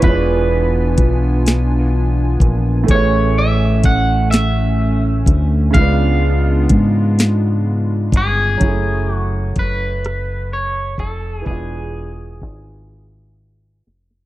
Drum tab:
HH |x---x-x---x-|x---x-x---x-|x---x-x---x-|x---x-x---x-|
SD |------o-----|------o-----|------o-----|------r-----|
BD |o---o-----o-|o---o-----o-|o---o-----o-|o---o-----o-|

HH |x---x-------|
SD |----------oo|
BD |o---o-------|